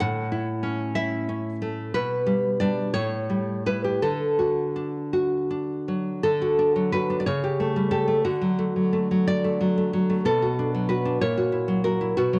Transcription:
0.00 1.91 A2 medium
0.00 0.93 F#5 loud
0.32 0.95 E4 medium
0.63 1.28 C#4 medium
0.95 1.94 E4 medium
0.95 1.28 E5 medium
1.29 1.94 C#4 medium
1.62 1.95 A3 medium
1.94 2.93 B2 medium
1.94 2.58 B4 medium
2.26 2.59 G3 medium
2.60 2.92 G3 medium
2.60 2.92 D4 medium
2.60 2.93 D5 medium
2.94 3.99 A2 medium
2.94 3.63 C#5 loud
3.30 3.65 G3 soft
3.66 3.99 G3 soft
3.66 4.00 E4 medium
3.66 3.84 B4 medium
3.84 4.03 G4 medium
4.02 6.20 D3 medium
4.02 5.09 A4 medium
4.39 5.12 F#4 medium
4.76 5.49 D4 medium
5.13 6.24 F#4 medium
5.50 6.24 D4 soft
5.88 6.24 F#3 soft
6.23 7.22 D3 medium
6.23 6.89 A4 medium
6.42 6.92 F#4 medium
6.59 7.09 D4 medium
6.76 7.26 F#3 medium
6.92 7.26 F#4 medium
6.92 7.18 B4 medium
7.10 7.26 D4 medium
7.20 7.26 D5 medium
7.26 8.22 C#3 medium
7.26 7.89 C#5 medium
7.44 7.90 G4 soft
7.60 8.06 A3 medium
7.76 8.24 G3 medium
7.91 8.24 G4 medium
7.91 8.22 A4 medium
8.08 8.24 A3 medium
8.25 10.23 D3 medium
8.25 9.25 F#4 medium
8.42 8.75 F#3 medium
8.59 8.92 A3 medium
8.76 9.10 F#3 soft
8.93 9.43 A3 medium
9.11 9.60 F#3 medium
9.28 10.22 D5 medium
9.44 9.76 A3 medium
9.61 9.92 F#3 soft
9.78 10.08 A3 medium
9.93 10.26 F#3 medium
10.10 10.26 A3 medium
10.25 11.18 B2 medium
10.25 10.87 A4 medium
10.42 10.88 F#4 medium
10.59 11.04 D4 medium
10.75 11.21 F#3 soft
10.89 11.21 F#4 medium
10.89 11.19 B4 medium
11.06 11.21 D4 medium
11.21 12.15 A#2 medium
11.21 11.82 C#5 medium
11.38 11.83 F#4 medium
11.52 11.99 E4 medium
11.68 12.17 F#3 medium
11.84 12.16 F#4 medium
11.84 12.16 A#4 medium
12.01 12.17 E4 soft
12.17 12.39 B2 medium
12.17 12.39 F#4 medium
12.33 12.39 F#3 medium

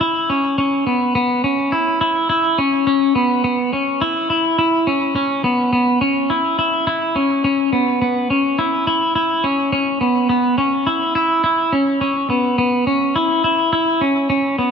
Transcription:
0.01 0.29 E4 medium
0.30 0.57 C#4 medium
0.58 0.86 C#4 medium
0.87 1.14 B3 medium
1.15 1.44 B3 medium
1.44 1.73 C#4 medium
1.72 2.00 E4 medium
2.01 2.28 E4 medium
2.29 2.58 E4 loud
2.58 2.86 C#4 medium
2.87 3.15 C#4 medium
3.15 3.43 B3 medium
3.44 3.73 B3 medium
3.73 4.01 C#4 medium
4.01 4.29 E4 medium
4.30 4.57 E4 medium
4.59 4.87 E4 loud
4.87 5.14 C#4 medium
5.16 5.44 C#4 medium
5.44 5.71 B3 medium
5.73 6.01 B3 medium
6.01 6.30 C#4 medium
6.30 6.57 E4 medium
6.59 6.86 E4 medium
6.87 7.15 E4 loud
7.16 7.43 C#4 medium
7.44 7.72 C#4 medium
7.73 8.00 B3 medium
8.02 8.30 B3 medium
8.30 8.59 C#4 medium
8.59 8.86 E4 medium
8.87 9.14 E4 medium
9.15 9.44 E4 medium
9.44 9.71 C#4 medium
9.72 10.00 C#4 medium
10.01 10.28 B3 medium
10.29 10.57 B3 medium
10.58 10.87 C#4 medium
10.87 11.14 E4 medium
11.15 11.43 E4 medium
11.44 11.72 E4 medium
11.72 12.00 C#4 medium
12.01 12.29 C#4 medium
12.30 12.57 B3 medium
12.58 12.86 B3 medium
12.87 13.15 C#4 medium
13.16 13.43 E4 medium
13.44 13.71 E4 medium
13.73 14.01 E4 medium
14.01 14.28 C#4 medium
14.30 14.58 C#4 medium
14.59 14.71 B3 medium

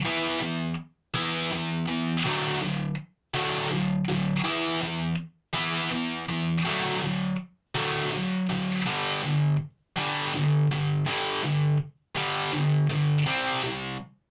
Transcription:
0.05 0.39 E3 medium
0.05 0.40 B3 medium
0.05 0.40 E4 medium
0.41 0.74 E3 medium
0.41 0.75 B3 medium
1.14 1.49 E3 medium
1.14 1.49 B3 medium
1.14 1.49 E4 medium
1.52 1.85 E3 medium
1.52 1.85 B3 medium
1.88 2.21 E3 soft
1.88 2.21 B3 medium
2.25 2.59 D3 medium
2.25 2.60 F#3 medium
2.25 2.60 A3 medium
2.62 2.95 D3 medium
2.62 2.95 F#3 medium
3.34 3.69 D3 medium
3.34 3.69 F#3 medium
3.34 3.70 A3 medium
3.71 4.04 D3 medium
3.71 4.04 F#3 medium
4.08 4.41 D3 medium
4.08 4.41 F#3 medium
4.44 4.79 E3 medium
4.44 4.79 B3 medium
4.44 4.79 E4 medium
4.81 5.14 E3 medium
4.81 5.15 B3 medium
5.54 5.89 E3 medium
5.54 5.89 B3 medium
5.54 5.89 E4 medium
5.91 6.25 E3 medium
5.91 6.25 B3 medium
6.29 6.62 E3 medium
6.29 6.62 B3 medium
6.65 7.00 D3 medium
6.65 7.00 F#3 medium
6.65 7.00 A3 medium
7.02 7.35 D3 medium
7.02 7.35 F#3 medium
7.75 8.10 D3 medium
7.75 8.10 F#3 medium
7.75 8.10 A3 medium
8.13 8.46 D3 medium
8.13 8.46 F#3 medium
8.49 8.82 D3 medium
8.49 8.83 F#3 medium
8.86 9.20 G2 medium
8.86 9.21 D3 medium
8.86 9.21 G3 medium
9.22 9.56 G2 medium
9.22 9.56 D3 medium
9.96 10.31 G2 medium
9.96 10.31 D3 medium
9.96 10.31 G3 medium
10.34 10.66 G2 medium
10.34 10.67 D3 medium
10.71 11.04 G2 medium
10.71 11.04 D3 medium
11.06 11.41 G2 medium
11.06 11.41 D3 medium
11.06 11.42 G3 medium
11.43 11.76 G2 medium
11.43 11.76 D3 medium
12.15 12.50 G2 medium
12.15 12.51 D3 medium
12.15 12.51 G3 medium
12.53 12.86 G2 medium
12.53 12.86 D3 medium
12.89 13.23 G2 medium
12.89 13.23 D3 medium
13.26 13.61 C3 medium
13.26 13.61 G3 medium
13.26 13.61 C4 loud
13.63 13.96 C3 medium
13.63 13.96 G3 medium

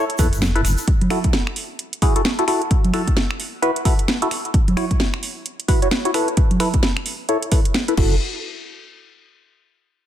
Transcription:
0.10 closed hi-hat medium
0.18 0.30 E2 medium
0.18 0.27 E4 medium
0.18 0.27 A4 medium
0.18 0.27 B4 medium
0.18 kick loud
0.18 open hi-hat loud
0.18 shaker medium
0.33 0.62 F#1 medium
0.33 closed hi-hat medium
0.33 shaker medium
0.42 snare loud
0.55 0.61 E4 medium
0.55 0.61 A4 medium
0.55 0.61 B4 loud
0.55 closed hi-hat medium
0.65 0.76 F#1 medium
0.65 finger snap soft
0.65 open hi-hat medium
0.65 shaker medium
0.77 closed hi-hat soft
0.77 shaker medium
0.88 kick loud
0.88 closed hi-hat medium
1.01 closed hi-hat soft
1.01 high conga medium
1.10 1.19 E4 medium
1.10 1.19 F#4 medium
1.10 1.19 A4 loud
1.10 finger snap medium
1.10 open hi-hat loud
1.24 kick loud
1.24 closed hi-hat medium
1.33 snare loud
1.47 finger snap medium
1.56 open hi-hat medium
1.79 closed hi-hat medium
1.93 closed hi-hat medium
2.02 2.14 E4 medium
2.02 2.14 F#4 medium
2.02 2.14 G#4 medium
2.02 kick loud
2.02 open hi-hat loud
2.16 2.22 E4 medium
2.16 2.22 F#4 medium
2.16 2.22 A4 medium
2.16 closed hi-hat medium
2.25 snare loud
2.39 2.44 E4 medium
2.39 2.44 F#4 medium
2.39 2.44 A4 medium
2.39 closed hi-hat medium
2.48 2.62 E4 medium
2.48 2.62 F#4 medium
2.48 2.62 A4 loud
2.48 finger snap soft
2.48 open hi-hat medium
2.62 closed hi-hat soft
2.71 kick loud
2.71 closed hi-hat medium
2.84 closed hi-hat soft
2.84 high conga medium
2.94 3.02 E4 medium
2.94 3.02 F#4 medium
2.94 3.02 A4 loud
2.94 finger snap medium
2.94 open hi-hat loud
3.08 kick loud
3.08 closed hi-hat medium
3.17 snare loud
3.31 finger snap medium
3.40 open hi-hat medium
3.62 3.71 E4 loud
3.62 3.71 F#4 medium
3.62 3.71 B4 loud
3.62 closed hi-hat medium
3.76 closed hi-hat medium
3.85 3.94 E4 medium
3.85 3.94 F#4 medium
3.85 3.94 A4 medium
3.85 kick loud
3.85 open hi-hat loud
3.99 closed hi-hat medium
4.08 snare loud
4.22 4.28 E4 medium
4.22 4.28 F#4 medium
4.22 4.28 A4 loud
4.22 closed hi-hat medium
4.31 finger snap soft
4.31 open hi-hat medium
4.45 closed hi-hat soft
4.54 kick loud
4.54 closed hi-hat medium
4.68 closed hi-hat soft
4.68 high conga medium
4.77 4.85 E4 medium
4.77 4.85 F#4 medium
4.77 4.85 C#5 loud
4.77 finger snap medium
4.77 open hi-hat loud
4.91 kick loud
4.91 closed hi-hat medium
5.00 snare loud
5.14 finger snap medium
5.23 open hi-hat medium
5.46 closed hi-hat medium
5.60 closed hi-hat medium
5.68 5.80 E4 medium
5.68 5.80 F#4 medium
5.68 5.80 B4 medium
5.68 kick loud
5.68 open hi-hat loud
5.82 5.88 E4 medium
5.82 5.88 F#4 medium
5.82 5.88 C#5 medium
5.82 closed hi-hat medium
5.91 snare loud
6.05 6.11 E4 medium
6.05 6.11 F#4 medium
6.05 6.11 C#5 medium
6.05 closed hi-hat medium
6.14 6.28 E4 medium
6.14 6.28 A4 medium
6.14 6.28 B4 loud
6.14 finger snap soft
6.14 open hi-hat medium
6.28 closed hi-hat soft
6.37 kick loud
6.37 closed hi-hat medium
6.51 closed hi-hat soft
6.51 high conga medium
6.60 6.69 E4 loud
6.60 6.69 A4 medium
6.60 6.69 B4 loud
6.60 finger snap medium
6.60 open hi-hat loud
6.74 kick loud
6.74 closed hi-hat medium
6.83 snare loud
6.97 finger snap medium
7.06 open hi-hat loud
7.29 7.37 E4 loud
7.29 7.37 A4 medium
7.29 7.37 C#5 loud
7.29 closed hi-hat medium
7.42 closed hi-hat medium
7.52 7.60 E4 medium
7.52 7.60 A4 medium
7.52 7.60 B4 medium
7.52 kick loud
7.52 open hi-hat loud
7.65 closed hi-hat medium
7.74 snare loud
7.88 7.94 E4 medium
7.88 7.94 A4 medium
7.88 7.94 B4 loud
7.88 closed hi-hat medium
7.97 8.19 F#1 medium
7.97 8.15 E4 medium
7.97 8.15 F#4 medium
7.97 8.15 A4 medium
7.97 kick loud
7.97 crash medium

